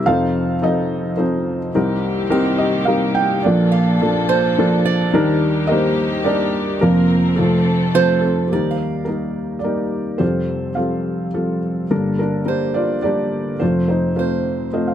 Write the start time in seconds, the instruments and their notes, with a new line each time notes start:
0.06 felt piano F1 F2 F3 C4 D#4 A4 C5 F5
0.62 felt piano F3 C4 D#4 A4 C5 D#5
1.17 felt piano F3 C4 D#4 A4 C5
1.74 felt piano C2 C3 G3 C4 D#4 A#4, string section D#3 A#3 C4 G4
2.30 felt piano G3 C4 D#4 A#4, steel-string acoustic guitar G5
2.58 felt piano D#5
2.85 felt piano G3 C4 D#4 A#4 F5
3.15 felt piano G5
3.43 felt piano A#1 A#2 F3 A#3 D4 F4 A4 D5, string section F3 A4
3.72 steel-string acoustic guitar F5
4.02 felt piano F3 A#3 D4 A4
4.29 steel-string acoustic guitar C5
4.58 felt piano F3 A#3 D4 A4
4.85 steel-string acoustic guitar D5
5.13 felt piano D#2 D#3 G3 D4 D#4 A#4, string section D#3 G4
5.67 felt piano G3 D#4 G4 A#4 C5 D#5
5.71 felt piano A#3
6.24 felt piano G3 D4 D#4 G4 A#4 D5
6.81 felt piano F1 F2 F3 A#3 C4 F4 A#4, string section F3 C4 A#4
7.36 felt piano F1 F2 F3 A3 C4 F4 A4, string section A3 A4
7.94 felt piano F3 A3 C4 A4, steel-string acoustic guitar C5
8.21 felt piano C4 A4
8.47 felt piano A#3 G4
8.52 felt piano D#2 D#3 G3 D#4 A#4, steel-string acoustic guitar D5
8.71 steel-string acoustic guitar F5
9.05 felt piano G3 A#3 D#4 A#4
9.59 felt piano D5
9.64 felt piano G3 A#3 D#4 G4 A#4
10.18 felt piano F1 F2 G3 C4 F4 A4 C5
10.23 felt piano F4
10.75 felt piano G3 C4 F4 A4 F5
11.34 felt piano G3 C4 F4 A4
11.90 felt piano G1 G2 G3 A#3 D4 A4 A#4
12.19 felt piano D4 A#4
12.46 felt piano G3 A#3 D4 A#4, steel-string acoustic guitar C5
12.74 felt piano F4 D5
13.02 felt piano G3 A#3 D4 G4 A#4 D5
13.59 felt piano F1 F2 A3 C4 F4 C5
13.88 felt piano D#4 C5
14.16 felt piano A3 C4 F4 C5, steel-string acoustic guitar C5
14.73 felt piano A3 C4 F4 C5 D#5
14.87 felt piano F5